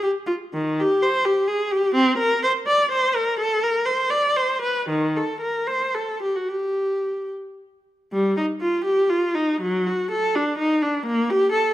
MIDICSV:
0, 0, Header, 1, 2, 480
1, 0, Start_track
1, 0, Key_signature, -2, "minor"
1, 0, Tempo, 502513
1, 507, Time_signature, 6, 3, 24, 8
1, 977, Tempo, 464396
1, 1937, Tempo, 482315
1, 4337, Tempo, 527241
1, 5777, Tempo, 543478
1, 7697, Tempo, 497925
1, 9617, Tempo, 471328
1, 11271, End_track
2, 0, Start_track
2, 0, Title_t, "Viola"
2, 0, Program_c, 0, 41
2, 27, Note_on_c, 0, 67, 77
2, 103, Note_off_c, 0, 67, 0
2, 254, Note_on_c, 0, 65, 75
2, 330, Note_off_c, 0, 65, 0
2, 512, Note_on_c, 0, 51, 75
2, 746, Note_off_c, 0, 51, 0
2, 762, Note_on_c, 0, 67, 85
2, 983, Note_on_c, 0, 72, 88
2, 984, Note_off_c, 0, 67, 0
2, 1214, Note_on_c, 0, 67, 81
2, 1222, Note_off_c, 0, 72, 0
2, 1445, Note_on_c, 0, 68, 80
2, 1455, Note_off_c, 0, 67, 0
2, 1689, Note_off_c, 0, 68, 0
2, 1692, Note_on_c, 0, 67, 83
2, 1935, Note_off_c, 0, 67, 0
2, 1936, Note_on_c, 0, 60, 89
2, 2164, Note_on_c, 0, 70, 87
2, 2171, Note_off_c, 0, 60, 0
2, 2408, Note_off_c, 0, 70, 0
2, 2417, Note_on_c, 0, 72, 84
2, 2497, Note_off_c, 0, 72, 0
2, 2650, Note_on_c, 0, 74, 92
2, 2889, Note_off_c, 0, 74, 0
2, 2894, Note_on_c, 0, 72, 86
2, 3128, Note_on_c, 0, 70, 83
2, 3129, Note_off_c, 0, 72, 0
2, 3369, Note_off_c, 0, 70, 0
2, 3375, Note_on_c, 0, 69, 93
2, 3606, Note_off_c, 0, 69, 0
2, 3607, Note_on_c, 0, 70, 86
2, 3830, Note_on_c, 0, 72, 82
2, 3846, Note_off_c, 0, 70, 0
2, 4077, Note_on_c, 0, 74, 92
2, 4079, Note_off_c, 0, 72, 0
2, 4332, Note_off_c, 0, 74, 0
2, 4337, Note_on_c, 0, 72, 83
2, 4570, Note_on_c, 0, 71, 78
2, 4577, Note_off_c, 0, 72, 0
2, 4814, Note_off_c, 0, 71, 0
2, 4818, Note_on_c, 0, 51, 78
2, 5055, Note_off_c, 0, 51, 0
2, 5066, Note_on_c, 0, 69, 74
2, 5290, Note_on_c, 0, 70, 69
2, 5301, Note_off_c, 0, 69, 0
2, 5528, Note_off_c, 0, 70, 0
2, 5528, Note_on_c, 0, 72, 72
2, 5773, Note_off_c, 0, 72, 0
2, 5778, Note_on_c, 0, 69, 64
2, 6014, Note_off_c, 0, 69, 0
2, 6019, Note_on_c, 0, 67, 64
2, 6133, Note_off_c, 0, 67, 0
2, 6139, Note_on_c, 0, 66, 58
2, 6256, Note_on_c, 0, 67, 60
2, 6257, Note_off_c, 0, 66, 0
2, 6985, Note_off_c, 0, 67, 0
2, 7702, Note_on_c, 0, 55, 77
2, 7931, Note_off_c, 0, 55, 0
2, 7940, Note_on_c, 0, 63, 76
2, 8017, Note_off_c, 0, 63, 0
2, 8165, Note_on_c, 0, 65, 76
2, 8394, Note_off_c, 0, 65, 0
2, 8399, Note_on_c, 0, 67, 78
2, 8633, Note_off_c, 0, 67, 0
2, 8635, Note_on_c, 0, 65, 80
2, 8877, Note_on_c, 0, 63, 78
2, 8884, Note_off_c, 0, 65, 0
2, 9134, Note_off_c, 0, 63, 0
2, 9136, Note_on_c, 0, 54, 82
2, 9376, Note_off_c, 0, 54, 0
2, 9381, Note_on_c, 0, 66, 84
2, 9616, Note_off_c, 0, 66, 0
2, 9616, Note_on_c, 0, 69, 83
2, 9854, Note_off_c, 0, 69, 0
2, 9864, Note_on_c, 0, 62, 81
2, 10095, Note_on_c, 0, 63, 79
2, 10103, Note_off_c, 0, 62, 0
2, 10334, Note_off_c, 0, 63, 0
2, 10343, Note_on_c, 0, 62, 80
2, 10583, Note_off_c, 0, 62, 0
2, 10586, Note_on_c, 0, 58, 88
2, 10820, Note_off_c, 0, 58, 0
2, 10828, Note_on_c, 0, 67, 89
2, 11056, Note_on_c, 0, 69, 84
2, 11063, Note_off_c, 0, 67, 0
2, 11271, Note_off_c, 0, 69, 0
2, 11271, End_track
0, 0, End_of_file